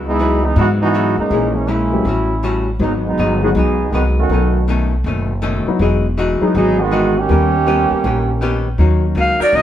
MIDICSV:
0, 0, Header, 1, 8, 480
1, 0, Start_track
1, 0, Tempo, 373832
1, 1681, Time_signature, 4, 2, 24, 8
1, 12352, End_track
2, 0, Start_track
2, 0, Title_t, "Clarinet"
2, 0, Program_c, 0, 71
2, 11816, Note_on_c, 0, 77, 78
2, 12082, Note_off_c, 0, 77, 0
2, 12103, Note_on_c, 0, 74, 84
2, 12273, Note_on_c, 0, 75, 95
2, 12292, Note_off_c, 0, 74, 0
2, 12352, Note_off_c, 0, 75, 0
2, 12352, End_track
3, 0, Start_track
3, 0, Title_t, "Saxophone section"
3, 0, Program_c, 1, 65
3, 12060, Note_on_c, 1, 54, 88
3, 12069, Note_on_c, 1, 63, 82
3, 12070, Note_on_c, 1, 70, 88
3, 12071, Note_on_c, 1, 61, 87
3, 12352, Note_off_c, 1, 54, 0
3, 12352, Note_off_c, 1, 61, 0
3, 12352, Note_off_c, 1, 63, 0
3, 12352, Note_off_c, 1, 70, 0
3, 12352, End_track
4, 0, Start_track
4, 0, Title_t, "Grand piano"
4, 0, Program_c, 2, 0
4, 1672, Note_on_c, 2, 52, 58
4, 1679, Note_on_c, 2, 56, 53
4, 1682, Note_on_c, 2, 58, 53
4, 1687, Note_on_c, 2, 61, 55
4, 1697, Note_on_c, 2, 68, 72
4, 1958, Note_off_c, 2, 52, 0
4, 1962, Note_off_c, 2, 56, 0
4, 1963, Note_off_c, 2, 58, 0
4, 1966, Note_off_c, 2, 61, 0
4, 1971, Note_off_c, 2, 68, 0
4, 2465, Note_on_c, 2, 54, 60
4, 2472, Note_on_c, 2, 57, 56
4, 2481, Note_on_c, 2, 59, 60
4, 2487, Note_on_c, 2, 61, 59
4, 2489, Note_on_c, 2, 67, 65
4, 2620, Note_off_c, 2, 54, 0
4, 2623, Note_off_c, 2, 57, 0
4, 2627, Note_off_c, 2, 59, 0
4, 2630, Note_off_c, 2, 61, 0
4, 2632, Note_off_c, 2, 67, 0
4, 3588, Note_on_c, 2, 54, 64
4, 3596, Note_on_c, 2, 56, 59
4, 3600, Note_on_c, 2, 59, 54
4, 3604, Note_on_c, 2, 63, 59
4, 3612, Note_on_c, 2, 68, 70
4, 3877, Note_off_c, 2, 54, 0
4, 3881, Note_off_c, 2, 56, 0
4, 3883, Note_off_c, 2, 59, 0
4, 3885, Note_off_c, 2, 63, 0
4, 3889, Note_off_c, 2, 68, 0
4, 4397, Note_on_c, 2, 54, 69
4, 4398, Note_on_c, 2, 56, 60
4, 4404, Note_on_c, 2, 59, 59
4, 4414, Note_on_c, 2, 63, 59
4, 4420, Note_on_c, 2, 68, 70
4, 4546, Note_off_c, 2, 54, 0
4, 4547, Note_off_c, 2, 56, 0
4, 4549, Note_off_c, 2, 59, 0
4, 4554, Note_off_c, 2, 63, 0
4, 4557, Note_off_c, 2, 68, 0
4, 5525, Note_on_c, 2, 54, 59
4, 5526, Note_on_c, 2, 59, 53
4, 5535, Note_on_c, 2, 61, 51
4, 5538, Note_on_c, 2, 63, 52
4, 5546, Note_on_c, 2, 69, 65
4, 6254, Note_off_c, 2, 54, 0
4, 6255, Note_off_c, 2, 59, 0
4, 6259, Note_off_c, 2, 61, 0
4, 6261, Note_off_c, 2, 63, 0
4, 6265, Note_off_c, 2, 69, 0
4, 7285, Note_on_c, 2, 54, 71
4, 7290, Note_on_c, 2, 59, 66
4, 7294, Note_on_c, 2, 63, 69
4, 7295, Note_on_c, 2, 64, 64
4, 7307, Note_on_c, 2, 66, 74
4, 7424, Note_off_c, 2, 54, 0
4, 7429, Note_off_c, 2, 59, 0
4, 7435, Note_off_c, 2, 63, 0
4, 7436, Note_off_c, 2, 64, 0
4, 7442, Note_off_c, 2, 66, 0
4, 7444, Note_on_c, 2, 54, 59
4, 7449, Note_on_c, 2, 59, 51
4, 7455, Note_on_c, 2, 63, 56
4, 7462, Note_on_c, 2, 64, 53
4, 7469, Note_on_c, 2, 68, 69
4, 7725, Note_off_c, 2, 54, 0
4, 7728, Note_off_c, 2, 59, 0
4, 7731, Note_off_c, 2, 63, 0
4, 7735, Note_off_c, 2, 64, 0
4, 7738, Note_off_c, 2, 68, 0
4, 8230, Note_on_c, 2, 54, 66
4, 8233, Note_on_c, 2, 59, 62
4, 8237, Note_on_c, 2, 63, 63
4, 8240, Note_on_c, 2, 64, 60
4, 8249, Note_on_c, 2, 68, 68
4, 8383, Note_off_c, 2, 54, 0
4, 8384, Note_off_c, 2, 59, 0
4, 8387, Note_off_c, 2, 63, 0
4, 8388, Note_off_c, 2, 64, 0
4, 8392, Note_off_c, 2, 68, 0
4, 9360, Note_on_c, 2, 55, 63
4, 9368, Note_on_c, 2, 59, 55
4, 9374, Note_on_c, 2, 61, 54
4, 9380, Note_on_c, 2, 63, 50
4, 9384, Note_on_c, 2, 70, 65
4, 9643, Note_off_c, 2, 55, 0
4, 9647, Note_off_c, 2, 59, 0
4, 9650, Note_off_c, 2, 61, 0
4, 9653, Note_off_c, 2, 63, 0
4, 9655, Note_off_c, 2, 70, 0
4, 9843, Note_on_c, 2, 55, 52
4, 9848, Note_on_c, 2, 59, 46
4, 9850, Note_on_c, 2, 61, 52
4, 9857, Note_on_c, 2, 63, 49
4, 9867, Note_on_c, 2, 73, 54
4, 10573, Note_off_c, 2, 55, 0
4, 10575, Note_off_c, 2, 59, 0
4, 10576, Note_off_c, 2, 61, 0
4, 10580, Note_off_c, 2, 63, 0
4, 10585, Note_off_c, 2, 73, 0
4, 11279, Note_on_c, 2, 54, 62
4, 11283, Note_on_c, 2, 58, 56
4, 11286, Note_on_c, 2, 61, 53
4, 11298, Note_on_c, 2, 70, 68
4, 11301, Note_on_c, 2, 63, 54
4, 12352, Note_off_c, 2, 54, 0
4, 12352, Note_off_c, 2, 58, 0
4, 12352, Note_off_c, 2, 61, 0
4, 12352, Note_off_c, 2, 63, 0
4, 12352, Note_off_c, 2, 70, 0
4, 12352, End_track
5, 0, Start_track
5, 0, Title_t, "Trombone section"
5, 0, Program_c, 3, 61
5, 82, Note_on_c, 3, 56, 84
5, 84, Note_on_c, 3, 64, 101
5, 89, Note_on_c, 3, 63, 93
5, 90, Note_on_c, 3, 59, 83
5, 524, Note_off_c, 3, 56, 0
5, 525, Note_off_c, 3, 64, 0
5, 528, Note_off_c, 3, 63, 0
5, 529, Note_off_c, 3, 59, 0
5, 563, Note_on_c, 3, 59, 82
5, 564, Note_on_c, 3, 63, 94
5, 566, Note_on_c, 3, 56, 75
5, 567, Note_on_c, 3, 52, 71
5, 716, Note_off_c, 3, 52, 0
5, 719, Note_off_c, 3, 63, 0
5, 720, Note_off_c, 3, 59, 0
5, 726, Note_off_c, 3, 56, 0
5, 730, Note_on_c, 3, 66, 93
5, 731, Note_on_c, 3, 52, 80
5, 734, Note_on_c, 3, 63, 85
5, 735, Note_on_c, 3, 59, 83
5, 869, Note_off_c, 3, 66, 0
5, 870, Note_off_c, 3, 52, 0
5, 872, Note_off_c, 3, 63, 0
5, 873, Note_off_c, 3, 59, 0
5, 1040, Note_on_c, 3, 52, 88
5, 1045, Note_on_c, 3, 66, 99
5, 1047, Note_on_c, 3, 59, 91
5, 1047, Note_on_c, 3, 63, 88
5, 1483, Note_off_c, 3, 52, 0
5, 1486, Note_off_c, 3, 66, 0
5, 1487, Note_off_c, 3, 59, 0
5, 1488, Note_off_c, 3, 63, 0
5, 1513, Note_on_c, 3, 63, 90
5, 1514, Note_on_c, 3, 61, 73
5, 1519, Note_on_c, 3, 56, 76
5, 1520, Note_on_c, 3, 58, 78
5, 1960, Note_off_c, 3, 61, 0
5, 1960, Note_off_c, 3, 63, 0
5, 1963, Note_off_c, 3, 56, 0
5, 1964, Note_off_c, 3, 58, 0
5, 1989, Note_on_c, 3, 56, 71
5, 1989, Note_on_c, 3, 61, 82
5, 1991, Note_on_c, 3, 58, 70
5, 1992, Note_on_c, 3, 52, 72
5, 2145, Note_off_c, 3, 58, 0
5, 2148, Note_off_c, 3, 56, 0
5, 2149, Note_off_c, 3, 61, 0
5, 2160, Note_off_c, 3, 52, 0
5, 2160, Note_on_c, 3, 58, 75
5, 2163, Note_on_c, 3, 56, 83
5, 2164, Note_on_c, 3, 61, 82
5, 2165, Note_on_c, 3, 64, 97
5, 2641, Note_off_c, 3, 58, 0
5, 2642, Note_off_c, 3, 56, 0
5, 3436, Note_off_c, 3, 61, 0
5, 3437, Note_off_c, 3, 64, 0
5, 3611, Note_on_c, 3, 63, 85
5, 3614, Note_on_c, 3, 56, 71
5, 3614, Note_on_c, 3, 59, 70
5, 3619, Note_on_c, 3, 54, 79
5, 3750, Note_off_c, 3, 63, 0
5, 3752, Note_off_c, 3, 56, 0
5, 3752, Note_off_c, 3, 59, 0
5, 3756, Note_off_c, 3, 54, 0
5, 3920, Note_on_c, 3, 59, 82
5, 3921, Note_on_c, 3, 56, 80
5, 3922, Note_on_c, 3, 54, 76
5, 3932, Note_on_c, 3, 63, 95
5, 4364, Note_off_c, 3, 59, 0
5, 4365, Note_off_c, 3, 56, 0
5, 4366, Note_off_c, 3, 54, 0
5, 4371, Note_off_c, 3, 63, 0
5, 4392, Note_on_c, 3, 59, 82
5, 4393, Note_on_c, 3, 66, 84
5, 4397, Note_on_c, 3, 51, 72
5, 4398, Note_on_c, 3, 56, 74
5, 4468, Note_off_c, 3, 59, 0
5, 4468, Note_off_c, 3, 66, 0
5, 4472, Note_off_c, 3, 51, 0
5, 4473, Note_off_c, 3, 56, 0
5, 4554, Note_on_c, 3, 59, 79
5, 4561, Note_on_c, 3, 68, 90
5, 4565, Note_on_c, 3, 54, 77
5, 4568, Note_on_c, 3, 63, 79
5, 5004, Note_off_c, 3, 59, 0
5, 5008, Note_off_c, 3, 68, 0
5, 5010, Note_off_c, 3, 54, 0
5, 5012, Note_off_c, 3, 63, 0
5, 5025, Note_on_c, 3, 51, 78
5, 5027, Note_on_c, 3, 66, 84
5, 5031, Note_on_c, 3, 56, 75
5, 5031, Note_on_c, 3, 59, 75
5, 5170, Note_off_c, 3, 51, 0
5, 5171, Note_off_c, 3, 66, 0
5, 5175, Note_off_c, 3, 56, 0
5, 5175, Note_off_c, 3, 59, 0
5, 5362, Note_on_c, 3, 57, 70
5, 5366, Note_on_c, 3, 61, 65
5, 5366, Note_on_c, 3, 66, 83
5, 5372, Note_on_c, 3, 51, 67
5, 5961, Note_off_c, 3, 57, 0
5, 5963, Note_off_c, 3, 61, 0
5, 5963, Note_off_c, 3, 66, 0
5, 5966, Note_off_c, 3, 51, 0
5, 8232, Note_on_c, 3, 54, 82
5, 8234, Note_on_c, 3, 63, 94
5, 8235, Note_on_c, 3, 56, 84
5, 8235, Note_on_c, 3, 59, 78
5, 8389, Note_off_c, 3, 54, 0
5, 8390, Note_off_c, 3, 59, 0
5, 8390, Note_off_c, 3, 63, 0
5, 8391, Note_off_c, 3, 56, 0
5, 8397, Note_on_c, 3, 68, 102
5, 8405, Note_on_c, 3, 54, 95
5, 8407, Note_on_c, 3, 63, 94
5, 8412, Note_on_c, 3, 59, 87
5, 8711, Note_off_c, 3, 59, 0
5, 8713, Note_off_c, 3, 68, 0
5, 8717, Note_off_c, 3, 54, 0
5, 8718, Note_off_c, 3, 63, 0
5, 8726, Note_on_c, 3, 59, 90
5, 8728, Note_on_c, 3, 56, 93
5, 8731, Note_on_c, 3, 51, 95
5, 8732, Note_on_c, 3, 66, 102
5, 9190, Note_off_c, 3, 51, 0
5, 9201, Note_off_c, 3, 59, 0
5, 9202, Note_off_c, 3, 56, 0
5, 9204, Note_off_c, 3, 66, 0
5, 9205, Note_on_c, 3, 51, 80
5, 9205, Note_on_c, 3, 58, 86
5, 9205, Note_on_c, 3, 61, 87
5, 9208, Note_on_c, 3, 67, 107
5, 11119, Note_off_c, 3, 58, 0
5, 11119, Note_off_c, 3, 61, 0
5, 11120, Note_off_c, 3, 51, 0
5, 11121, Note_off_c, 3, 67, 0
5, 12352, End_track
6, 0, Start_track
6, 0, Title_t, "Hollow-body jazz guitar"
6, 0, Program_c, 4, 26
6, 247, Note_on_c, 4, 49, 61
6, 254, Note_on_c, 4, 54, 67
6, 264, Note_on_c, 4, 59, 65
6, 269, Note_on_c, 4, 64, 64
6, 573, Note_off_c, 4, 49, 0
6, 577, Note_off_c, 4, 54, 0
6, 582, Note_off_c, 4, 59, 0
6, 584, Note_off_c, 4, 64, 0
6, 722, Note_on_c, 4, 49, 50
6, 725, Note_on_c, 4, 54, 53
6, 742, Note_on_c, 4, 59, 55
6, 753, Note_on_c, 4, 64, 53
6, 1051, Note_off_c, 4, 49, 0
6, 1053, Note_off_c, 4, 54, 0
6, 1061, Note_off_c, 4, 59, 0
6, 1067, Note_off_c, 4, 64, 0
6, 1207, Note_on_c, 4, 49, 67
6, 1215, Note_on_c, 4, 54, 74
6, 1220, Note_on_c, 4, 59, 76
6, 1230, Note_on_c, 4, 64, 73
6, 1534, Note_off_c, 4, 49, 0
6, 1538, Note_off_c, 4, 54, 0
6, 1540, Note_off_c, 4, 59, 0
6, 1545, Note_off_c, 4, 64, 0
6, 1687, Note_on_c, 4, 46, 45
6, 1697, Note_on_c, 4, 56, 52
6, 1714, Note_on_c, 4, 61, 51
6, 1720, Note_on_c, 4, 64, 48
6, 2014, Note_off_c, 4, 46, 0
6, 2019, Note_off_c, 4, 56, 0
6, 2027, Note_off_c, 4, 61, 0
6, 2030, Note_off_c, 4, 64, 0
6, 2150, Note_on_c, 4, 46, 61
6, 2160, Note_on_c, 4, 56, 66
6, 2163, Note_on_c, 4, 61, 70
6, 2173, Note_on_c, 4, 64, 63
6, 2485, Note_off_c, 4, 46, 0
6, 2491, Note_off_c, 4, 56, 0
6, 2492, Note_off_c, 4, 61, 0
6, 2497, Note_off_c, 4, 64, 0
6, 2654, Note_on_c, 4, 45, 54
6, 2664, Note_on_c, 4, 55, 53
6, 2675, Note_on_c, 4, 61, 50
6, 2684, Note_on_c, 4, 66, 60
6, 2977, Note_off_c, 4, 45, 0
6, 2982, Note_off_c, 4, 55, 0
6, 2988, Note_off_c, 4, 61, 0
6, 2993, Note_off_c, 4, 66, 0
6, 3120, Note_on_c, 4, 45, 76
6, 3128, Note_on_c, 4, 55, 71
6, 3138, Note_on_c, 4, 61, 79
6, 3142, Note_on_c, 4, 66, 87
6, 3451, Note_off_c, 4, 45, 0
6, 3455, Note_off_c, 4, 55, 0
6, 3460, Note_off_c, 4, 61, 0
6, 3462, Note_off_c, 4, 66, 0
6, 3609, Note_on_c, 4, 44, 48
6, 3622, Note_on_c, 4, 54, 47
6, 3632, Note_on_c, 4, 59, 50
6, 3642, Note_on_c, 4, 63, 45
6, 3935, Note_off_c, 4, 44, 0
6, 3942, Note_off_c, 4, 54, 0
6, 3947, Note_off_c, 4, 59, 0
6, 3952, Note_off_c, 4, 63, 0
6, 4089, Note_on_c, 4, 44, 62
6, 4096, Note_on_c, 4, 54, 61
6, 4097, Note_on_c, 4, 59, 63
6, 4105, Note_on_c, 4, 63, 75
6, 4415, Note_off_c, 4, 44, 0
6, 4419, Note_off_c, 4, 54, 0
6, 4420, Note_off_c, 4, 59, 0
6, 4424, Note_off_c, 4, 63, 0
6, 4564, Note_on_c, 4, 44, 47
6, 4575, Note_on_c, 4, 54, 50
6, 4590, Note_on_c, 4, 59, 61
6, 4605, Note_on_c, 4, 63, 60
6, 4893, Note_off_c, 4, 44, 0
6, 4899, Note_off_c, 4, 54, 0
6, 4906, Note_off_c, 4, 59, 0
6, 4913, Note_off_c, 4, 63, 0
6, 5044, Note_on_c, 4, 44, 65
6, 5057, Note_on_c, 4, 54, 72
6, 5066, Note_on_c, 4, 59, 72
6, 5070, Note_on_c, 4, 63, 71
6, 5373, Note_off_c, 4, 44, 0
6, 5380, Note_off_c, 4, 54, 0
6, 5384, Note_off_c, 4, 59, 0
6, 5386, Note_off_c, 4, 63, 0
6, 5536, Note_on_c, 4, 47, 45
6, 5549, Note_on_c, 4, 51, 46
6, 5559, Note_on_c, 4, 57, 49
6, 5569, Note_on_c, 4, 61, 56
6, 5859, Note_off_c, 4, 47, 0
6, 5866, Note_off_c, 4, 51, 0
6, 5871, Note_off_c, 4, 57, 0
6, 5876, Note_off_c, 4, 61, 0
6, 6006, Note_on_c, 4, 47, 75
6, 6015, Note_on_c, 4, 51, 67
6, 6023, Note_on_c, 4, 57, 78
6, 6036, Note_on_c, 4, 61, 77
6, 6335, Note_off_c, 4, 47, 0
6, 6339, Note_off_c, 4, 51, 0
6, 6343, Note_off_c, 4, 57, 0
6, 6349, Note_off_c, 4, 61, 0
6, 6495, Note_on_c, 4, 47, 58
6, 6501, Note_on_c, 4, 51, 60
6, 6508, Note_on_c, 4, 57, 60
6, 6522, Note_on_c, 4, 61, 64
6, 6819, Note_off_c, 4, 47, 0
6, 6822, Note_off_c, 4, 51, 0
6, 6825, Note_off_c, 4, 57, 0
6, 6832, Note_off_c, 4, 61, 0
6, 6958, Note_on_c, 4, 47, 78
6, 6962, Note_on_c, 4, 51, 88
6, 6964, Note_on_c, 4, 57, 82
6, 6978, Note_on_c, 4, 61, 91
6, 7290, Note_off_c, 4, 47, 0
6, 7293, Note_off_c, 4, 51, 0
6, 7294, Note_off_c, 4, 57, 0
6, 7300, Note_off_c, 4, 61, 0
6, 7454, Note_on_c, 4, 52, 52
6, 7470, Note_on_c, 4, 56, 58
6, 7474, Note_on_c, 4, 63, 60
6, 7486, Note_on_c, 4, 66, 55
6, 7778, Note_off_c, 4, 52, 0
6, 7787, Note_off_c, 4, 56, 0
6, 7788, Note_off_c, 4, 63, 0
6, 7794, Note_off_c, 4, 66, 0
6, 7929, Note_on_c, 4, 52, 70
6, 7933, Note_on_c, 4, 56, 69
6, 7941, Note_on_c, 4, 63, 77
6, 7949, Note_on_c, 4, 66, 85
6, 8256, Note_off_c, 4, 52, 0
6, 8258, Note_off_c, 4, 56, 0
6, 8262, Note_off_c, 4, 63, 0
6, 8266, Note_off_c, 4, 66, 0
6, 8416, Note_on_c, 4, 52, 46
6, 8426, Note_on_c, 4, 56, 50
6, 8441, Note_on_c, 4, 63, 57
6, 8451, Note_on_c, 4, 66, 56
6, 8739, Note_off_c, 4, 52, 0
6, 8744, Note_off_c, 4, 56, 0
6, 8752, Note_off_c, 4, 63, 0
6, 8757, Note_off_c, 4, 66, 0
6, 8876, Note_on_c, 4, 52, 69
6, 8887, Note_on_c, 4, 56, 71
6, 8888, Note_on_c, 4, 63, 80
6, 8902, Note_on_c, 4, 66, 81
6, 9209, Note_off_c, 4, 52, 0
6, 9215, Note_off_c, 4, 56, 0
6, 9215, Note_off_c, 4, 63, 0
6, 9222, Note_off_c, 4, 66, 0
6, 9360, Note_on_c, 4, 51, 50
6, 9376, Note_on_c, 4, 59, 51
6, 9384, Note_on_c, 4, 61, 51
6, 9393, Note_on_c, 4, 67, 54
6, 9691, Note_off_c, 4, 51, 0
6, 9699, Note_off_c, 4, 59, 0
6, 9703, Note_off_c, 4, 61, 0
6, 9707, Note_off_c, 4, 67, 0
6, 9842, Note_on_c, 4, 51, 70
6, 9854, Note_on_c, 4, 59, 82
6, 9858, Note_on_c, 4, 61, 80
6, 9873, Note_on_c, 4, 67, 74
6, 10172, Note_off_c, 4, 51, 0
6, 10178, Note_off_c, 4, 59, 0
6, 10180, Note_off_c, 4, 61, 0
6, 10187, Note_off_c, 4, 67, 0
6, 10325, Note_on_c, 4, 51, 57
6, 10342, Note_on_c, 4, 59, 53
6, 10348, Note_on_c, 4, 61, 60
6, 10359, Note_on_c, 4, 67, 65
6, 10653, Note_off_c, 4, 51, 0
6, 10662, Note_off_c, 4, 59, 0
6, 10665, Note_off_c, 4, 61, 0
6, 10670, Note_off_c, 4, 67, 0
6, 10800, Note_on_c, 4, 51, 68
6, 10809, Note_on_c, 4, 59, 85
6, 10818, Note_on_c, 4, 61, 87
6, 10823, Note_on_c, 4, 67, 93
6, 11130, Note_off_c, 4, 51, 0
6, 11135, Note_off_c, 4, 59, 0
6, 11140, Note_off_c, 4, 61, 0
6, 11142, Note_off_c, 4, 67, 0
6, 11277, Note_on_c, 4, 51, 44
6, 11289, Note_on_c, 4, 58, 58
6, 11297, Note_on_c, 4, 61, 54
6, 11308, Note_on_c, 4, 66, 55
6, 11609, Note_off_c, 4, 51, 0
6, 11615, Note_off_c, 4, 58, 0
6, 11619, Note_off_c, 4, 61, 0
6, 11624, Note_off_c, 4, 66, 0
6, 11759, Note_on_c, 4, 51, 58
6, 11777, Note_on_c, 4, 58, 59
6, 11780, Note_on_c, 4, 61, 68
6, 11783, Note_on_c, 4, 66, 70
6, 12090, Note_off_c, 4, 51, 0
6, 12099, Note_off_c, 4, 58, 0
6, 12101, Note_off_c, 4, 61, 0
6, 12102, Note_off_c, 4, 66, 0
6, 12241, Note_on_c, 4, 51, 42
6, 12262, Note_on_c, 4, 58, 51
6, 12272, Note_on_c, 4, 61, 52
6, 12278, Note_on_c, 4, 66, 50
6, 12352, Note_off_c, 4, 51, 0
6, 12352, Note_off_c, 4, 58, 0
6, 12352, Note_off_c, 4, 61, 0
6, 12352, Note_off_c, 4, 66, 0
6, 12352, End_track
7, 0, Start_track
7, 0, Title_t, "Upright bass"
7, 0, Program_c, 5, 32
7, 0, Note_on_c, 5, 37, 85
7, 665, Note_off_c, 5, 37, 0
7, 718, Note_on_c, 5, 44, 98
7, 1461, Note_off_c, 5, 44, 0
7, 1508, Note_on_c, 5, 33, 69
7, 1666, Note_off_c, 5, 33, 0
7, 1676, Note_on_c, 5, 34, 89
7, 2591, Note_off_c, 5, 34, 0
7, 2630, Note_on_c, 5, 33, 87
7, 3548, Note_off_c, 5, 33, 0
7, 3588, Note_on_c, 5, 32, 90
7, 4041, Note_off_c, 5, 32, 0
7, 4078, Note_on_c, 5, 31, 77
7, 4526, Note_off_c, 5, 31, 0
7, 4554, Note_on_c, 5, 35, 96
7, 5005, Note_off_c, 5, 35, 0
7, 5036, Note_on_c, 5, 36, 74
7, 5486, Note_off_c, 5, 36, 0
7, 5514, Note_on_c, 5, 35, 88
7, 6430, Note_off_c, 5, 35, 0
7, 6473, Note_on_c, 5, 30, 92
7, 7220, Note_off_c, 5, 30, 0
7, 7438, Note_on_c, 5, 28, 92
7, 8182, Note_off_c, 5, 28, 0
7, 8405, Note_on_c, 5, 32, 91
7, 9316, Note_off_c, 5, 32, 0
7, 9360, Note_on_c, 5, 39, 88
7, 10103, Note_off_c, 5, 39, 0
7, 10323, Note_on_c, 5, 34, 96
7, 11234, Note_off_c, 5, 34, 0
7, 11273, Note_on_c, 5, 39, 75
7, 11739, Note_off_c, 5, 39, 0
7, 11747, Note_on_c, 5, 37, 90
7, 12045, Note_off_c, 5, 37, 0
7, 12233, Note_on_c, 5, 34, 88
7, 12352, Note_off_c, 5, 34, 0
7, 12352, End_track
8, 0, Start_track
8, 0, Title_t, "Muted upright bass strokes"
8, 7276, Note_on_c, 9, 29, 45
8, 7405, Note_off_c, 9, 29, 0
8, 8230, Note_on_c, 9, 29, 43
8, 8358, Note_off_c, 9, 29, 0
8, 10154, Note_on_c, 9, 29, 44
8, 10282, Note_off_c, 9, 29, 0
8, 12063, Note_on_c, 9, 29, 39
8, 12192, Note_off_c, 9, 29, 0
8, 12352, End_track
0, 0, End_of_file